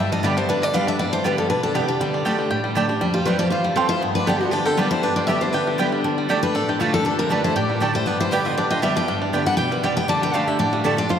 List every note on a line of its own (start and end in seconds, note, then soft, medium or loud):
0.00 0.47 G2 medium
0.00 0.23 G3 medium
0.00 0.12 D4 medium
0.00 1.13 G4 medium
0.00 0.12 E5 medium
0.12 0.48 D4 medium
0.12 0.24 D#5 loud
0.23 0.36 D3 medium
0.23 0.62 G3 medium
0.23 0.37 G3 medium
0.23 0.33 B3 medium
0.23 0.37 B3 medium
0.23 0.33 G4 medium
0.23 0.36 G4 medium
0.23 0.37 D5 medium
0.23 0.34 D5 medium
0.23 0.34 G5 medium
0.37 0.72 D3 medium
0.37 0.49 B3 soft
0.37 0.49 G4 medium
0.37 0.49 C5 medium
0.49 0.72 D3 medium
0.49 0.87 D4 medium
0.49 0.63 B4 medium
0.62 0.99 G3 medium
0.62 0.74 D5 loud
0.73 0.98 D3 medium
0.73 0.98 G3 medium
0.73 0.83 B3 medium
0.73 1.10 B3 medium
0.73 0.99 B3 medium
0.73 0.84 G4 medium
0.73 0.99 G4 medium
0.73 0.84 D5 medium
0.73 0.87 F5 medium
0.73 0.84 G5 loud
0.87 1.12 D4 medium
0.87 0.99 E5 loud
0.99 1.47 G2 medium
0.99 1.24 G3 medium
0.99 1.12 D5 medium
1.13 1.47 D4 medium
1.13 1.24 C5 loud
1.24 1.37 D3 medium
1.24 1.63 G3 medium
1.24 1.37 G3 medium
1.24 1.34 B3 medium
1.24 1.38 B3 medium
1.24 1.34 G4 medium
1.24 1.36 G4 loud
1.24 1.38 B4 medium
1.24 1.34 D5 medium
1.24 1.34 G5 medium
1.37 1.73 D3 medium
1.37 1.50 B3 soft
1.37 1.49 G4 medium
1.37 1.49 A4 medium
1.50 1.74 B2 medium
1.50 1.86 D4 medium
1.50 1.63 B4 medium
1.63 2.00 G3 medium
1.63 1.75 A4 medium
1.74 1.99 C3 medium
1.74 1.84 B3 medium
1.74 2.00 B3 medium
1.74 1.84 G4 medium
1.74 1.87 G4 medium
1.74 1.85 D5 loud
1.74 1.85 G5 loud
1.88 2.00 D4 medium
1.88 2.47 G4 medium
2.01 2.24 D3 medium
2.01 2.38 G3 medium
2.14 2.49 D4 medium
2.25 2.49 D3 medium
2.25 2.35 A3 medium
2.25 2.49 A3 medium
2.25 2.50 D4 medium
2.25 2.50 G4 medium
2.25 2.35 G4 medium
2.25 2.50 G4 loud
2.25 2.35 D5 medium
2.25 2.35 A5 medium
2.39 2.63 G3 medium
2.51 2.99 A2 medium
2.51 2.76 G4 medium
2.64 3.01 G3 medium
2.75 2.88 D3 medium
2.75 2.85 A3 loud
2.75 2.89 A3 loud
2.75 2.89 D4 loud
2.75 2.85 G4 loud
2.75 3.17 G4 medium
2.75 2.88 G4 medium
2.75 2.85 D5 loud
2.75 2.86 A5 medium
2.89 3.01 D4 medium
2.89 3.02 D4 soft
2.89 3.00 G4 medium
3.01 3.49 F2 medium
3.01 3.26 G3 medium
3.14 3.49 F4 medium
3.14 3.26 G4 medium
3.25 3.39 F3 medium
3.25 3.64 G3 medium
3.25 3.39 G3 medium
3.25 3.35 A3 medium
3.25 3.39 C4 medium
3.25 3.35 F4 medium
3.25 3.38 G4 medium
3.25 3.38 B4 medium
3.25 3.36 C5 medium
3.25 3.36 G5 loud
3.39 3.74 F3 medium
3.39 3.52 C4 soft
3.39 3.51 G4 medium
3.39 3.50 D5 loud
3.50 3.76 E2 medium
3.50 3.87 F4 medium
3.50 3.64 F4 medium
3.50 3.64 C5 medium
3.64 4.78 G3 medium
3.64 3.76 A3 soft
3.64 3.76 F4 medium
3.76 4.01 F2 medium
3.76 3.86 A3 medium
3.76 3.89 C4 medium
3.76 4.01 C4 medium
3.76 3.86 F4 medium
3.76 3.89 A4 medium
3.76 3.86 C5 medium
3.76 3.86 G5 loud
3.89 4.01 E4 medium
3.89 4.02 F4 medium
3.89 4.01 C5 loud
4.01 4.50 G2 medium
4.01 4.38 B3 medium
4.15 4.26 D4 medium
4.15 4.27 B4 medium
4.26 4.40 D3 medium
4.26 4.40 G3 loud
4.26 4.36 B3 medium
4.26 4.41 B3 loud
4.26 4.40 D4 medium
4.26 4.37 G4 medium
4.26 4.66 G4 medium
4.26 4.39 G4 loud
4.26 4.40 A4 medium
4.26 4.37 D5 loud
4.26 4.37 G5 medium
4.40 4.52 A3 medium
4.40 4.75 B3 medium
4.40 4.53 B3 soft
4.40 4.51 F#4 medium
4.40 4.52 G4 medium
4.51 4.76 D3 medium
4.51 4.65 B3 medium
4.51 4.91 D4 medium
4.51 4.65 G4 medium
4.65 4.78 C4 medium
4.65 5.54 G4 medium
4.65 4.77 A4 medium
4.77 4.90 D3 medium
4.77 4.91 G3 loud
4.77 5.16 G3 medium
4.77 4.87 B3 medium
4.77 4.91 B3 loud
4.77 4.90 D4 medium
4.77 4.87 G4 medium
4.77 4.89 G4 loud
4.77 4.90 B4 medium
4.77 4.88 D5 medium
4.77 4.88 G5 loud
4.90 5.03 B3 medium
4.90 5.03 D4 medium
4.90 5.02 E4 medium
4.90 5.02 G4 medium
4.90 5.03 C5 medium
5.03 5.51 G2 medium
5.03 5.42 D4 medium
5.03 5.17 D4 medium
5.03 5.16 B4 medium
5.16 5.67 G3 medium
5.16 5.28 F4 medium
5.16 5.26 D5 medium
5.27 5.41 D3 medium
5.27 5.41 G3 medium
5.27 5.38 B3 medium
5.27 5.65 B3 medium
5.27 5.42 B3 medium
5.27 5.38 G4 medium
5.27 5.41 G4 medium
5.27 5.40 G4 medium
5.27 5.38 D5 medium
5.27 5.40 E5 loud
5.27 5.38 G5 medium
5.41 5.54 B3 medium
5.41 6.05 D4 medium
5.41 5.54 E4 medium
5.41 5.53 G4 medium
5.41 5.52 C5 medium
5.52 5.77 D3 medium
5.52 5.93 D4 medium
5.52 5.79 G4 medium
5.52 5.92 B4 medium
5.67 5.92 G3 medium
5.78 6.03 D3 loud
5.78 6.03 G3 medium
5.78 5.88 B3 medium
5.78 6.03 B3 loud
5.78 6.29 G4 medium
5.78 5.89 G4 medium
5.78 6.04 G4 loud
5.78 5.89 D5 medium
5.78 5.89 G5 loud
5.92 6.18 G3 medium
6.04 6.28 D3 medium
6.04 6.43 D4 medium
6.18 6.80 G3 medium
6.29 6.53 D3 medium
6.29 6.39 A3 medium
6.29 6.54 A3 medium
6.29 6.54 D4 medium
6.29 6.39 G4 medium
6.29 6.69 G4 medium
6.29 6.54 G4 loud
6.29 6.39 D5 medium
6.29 6.39 A5 loud
6.43 6.54 D4 medium
6.43 6.56 D4 medium
6.43 6.55 B4 loud
6.55 7.03 A2 medium
6.55 6.68 D4 medium
6.55 6.93 D4 medium
6.55 6.68 A4 medium
6.69 6.80 F3 soft
6.69 6.80 D4 soft
6.69 7.56 G4 medium
6.79 7.04 D3 medium
6.79 7.18 G3 medium
6.79 6.89 A3 medium
6.79 7.04 A3 medium
6.79 6.93 A3 medium
6.79 7.05 D4 medium
6.79 6.93 F4 medium
6.79 6.90 G4 medium
6.79 7.05 G4 loud
6.79 6.90 D5 medium
6.79 6.90 A5 medium
6.94 7.05 C4 medium
6.94 7.05 D4 medium
6.94 7.05 A4 loud
7.05 7.28 D3 medium
7.05 7.30 D4 medium
7.05 7.18 D4 medium
7.05 7.19 A4 medium
7.19 7.69 G3 medium
7.19 7.30 C4 medium
7.19 7.31 A#4 loud
7.29 7.54 D3 medium
7.29 7.40 A3 medium
7.29 7.55 A3 medium
7.29 7.44 D4 medium
7.29 7.55 D4 medium
7.29 7.44 D4 medium
7.29 7.40 G4 loud
7.29 7.55 G4 loud
7.29 7.44 B4 medium
7.29 7.40 D5 medium
7.29 7.41 A5 loud
7.44 8.58 D4 medium
7.44 7.56 E4 medium
7.44 7.55 C5 loud
7.56 8.04 A2 medium
7.56 7.81 G4 medium
7.56 7.92 G4 medium
7.56 7.92 D5 medium
7.70 7.95 G3 medium
7.80 7.94 D3 medium
7.80 7.91 A3 medium
7.80 7.94 A3 medium
7.80 7.94 D4 medium
7.80 7.91 G4 loud
7.80 8.33 G4 medium
7.80 7.92 G4 loud
7.80 7.91 D5 loud
7.80 7.91 A5 loud
7.94 8.20 G3 medium
7.94 8.07 D4 soft
7.94 8.06 E4 medium
7.94 8.06 G4 medium
7.94 8.07 C5 medium
8.06 8.55 G2 medium
8.06 8.43 B3 medium
8.06 8.20 D4 medium
8.06 8.20 B4 medium
8.20 8.83 G3 medium
8.20 8.31 E4 medium
8.20 8.32 C5 loud
8.31 8.56 D3 medium
8.31 8.56 G3 medium
8.31 8.42 B3 medium
8.31 8.57 B3 loud
8.31 8.45 G4 medium
8.31 8.42 G4 medium
8.31 8.71 G4 medium
8.31 8.57 G4 medium
8.31 8.45 D5 medium
8.31 8.42 D5 loud
8.31 8.42 G5 medium
8.45 8.81 B3 medium
8.45 8.57 F4 medium
8.45 8.57 D#5 loud
8.57 8.81 D3 medium
8.57 8.96 D4 medium
8.57 8.70 G4 medium
8.57 8.70 D5 medium
8.70 8.82 F4 medium
8.70 9.34 G4 medium
8.70 8.82 D#5 loud
8.82 8.95 D3 medium
8.82 8.95 G3 medium
8.82 9.08 G3 medium
8.82 8.92 B3 medium
8.82 8.96 B3 medium
8.82 8.92 G4 loud
8.82 8.95 G4 medium
8.82 8.94 G4 medium
8.82 8.92 D5 loud
8.82 8.96 E5 medium
8.82 8.93 G5 loud
8.95 9.08 B3 soft
8.95 9.20 D4 medium
8.95 9.07 G4 medium
8.95 9.20 B4 medium
8.95 9.20 G5 loud
9.08 9.56 G2 medium
9.08 9.46 G3 medium
9.22 9.56 D4 medium
9.33 9.46 D3 medium
9.33 9.46 G3 medium
9.33 9.43 B3 medium
9.33 9.47 B3 loud
9.33 9.43 G4 medium
9.33 9.58 G4 medium
9.33 9.45 G4 loud
9.33 9.43 D5 medium
9.33 9.43 G5 medium
9.46 9.71 G3 medium
9.46 9.59 B3 soft
9.46 9.58 G4 medium
9.46 9.57 A4 medium
9.46 9.56 F#5 loud
9.57 9.82 B2 medium
9.57 9.83 G4 medium
9.57 9.71 B4 medium
9.57 9.70 G5 loud
9.71 10.08 G3 medium
9.71 9.83 D4 soft
9.71 9.83 B4 medium
9.83 10.08 C3 medium
9.83 9.93 B3 medium
9.83 9.96 G4 medium
9.83 9.93 G4 medium
9.83 11.13 G4 medium
9.83 9.97 D5 medium
9.83 9.94 D5 medium
9.83 9.94 G5 loud
9.97 10.09 B3 medium
9.97 10.08 B4 medium
9.97 10.08 G5 medium
10.08 10.32 D3 medium
10.08 10.34 G3 medium
10.08 10.21 D5 loud
10.08 10.22 A5 loud
10.22 10.57 D4 medium
10.22 10.34 B4 medium
10.22 10.34 G5 loud
10.33 10.58 D3 medium
10.33 10.72 G3 medium
10.33 10.43 A3 medium
10.33 10.58 A3 loud
10.33 10.58 D4 loud
10.33 10.44 G4 medium
10.33 10.59 G4 loud
10.33 10.47 A4 medium
10.33 10.44 D5 medium
10.33 10.47 F5 medium
10.33 10.44 A5 loud
10.47 10.82 D3 medium
10.47 10.58 G4 medium
10.47 10.59 E5 medium
10.59 11.07 A2 medium
10.59 10.84 D4 medium
10.59 10.72 G4 medium
10.59 10.72 D5 medium
10.73 11.13 G3 medium
10.73 10.84 A3 soft
10.73 10.84 F4 soft
10.84 10.97 D3 medium
10.84 10.94 A3 loud
10.84 10.97 A3 medium
10.84 10.97 D4 medium
10.84 10.94 G4 loud
10.84 10.96 G4 medium
10.84 10.97 A4 medium
10.84 10.94 D5 loud
10.84 10.94 A5 loud
10.97 11.10 D4 medium
10.97 11.10 D4 soft
10.97 11.09 F4 medium
10.97 11.09 G4 medium
10.97 11.10 D5 loud
11.09 11.19 F2 medium
11.09 11.19 F4 medium
11.09 11.19 C5 medium